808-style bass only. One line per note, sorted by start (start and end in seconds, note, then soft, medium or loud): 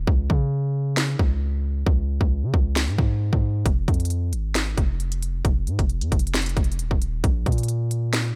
0.07 0.29 C#2 loud
0.30 1.16 C#3 loud
1.19 1.84 C#2 loud
1.86 2.19 C#2 loud
2.21 2.45 C#2 loud
2.43 2.53 C#3 loud
2.54 2.89 C#2 loud
2.88 2.98 G#2 loud
2.98 3.31 G#2 loud
3.33 3.64 G#2 loud
3.66 3.87 F1 loud
3.88 4.34 F2 loud
4.33 4.75 G#1 loud
4.78 5.42 F1 loud
5.45 5.69 F1 loud
5.67 5.78 G#2 loud
5.79 6.03 F1 loud
6.01 6.11 F2 loud
6.12 6.55 F1 loud
6.57 6.80 F1 loud
6.79 6.90 D#1 loud
6.91 7.23 D#1 loud
7.24 7.45 A#1 loud
7.46 8.32 A#2 loud